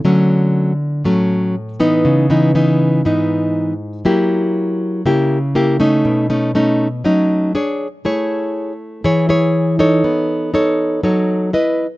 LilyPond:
\new Staff \with { instrumentName = "Nylon-string guitar" } { \time 4/4 \key b \mixolydian \tempo 4 = 120 << { <fis a cis'>4. r8 <fis a cis'>4 r8 <e b dis'>8~ | <e b dis'>8 <e b dis'>8 <e b dis'>4 <e b dis'>4. r8 | <ais e' g'>2 <ais e' g'>8 r8 <ais e' g'>8 <a cis' dis'>8~ | <a cis' dis'>8 <a cis' dis'>8 <a cis' dis'>8 r8 <a cis' dis'>4 <d' gis' cis''>8 r8 |
<e' gis' cis''>4. r8 <e' gis' cis''>8 <e' gis' cis''>4 <dis' a' cis''>8~ | <dis' a' cis''>4 <dis' a' cis''>4 <dis' a' cis''>4 <e' b' dis''>8 r8 | } \\ { d2 a,2 | cis2 gis,2 | fis2 cis2 | b,2 fis4 r4 |
a2 e2 | b2 fis4 r4 | } >> }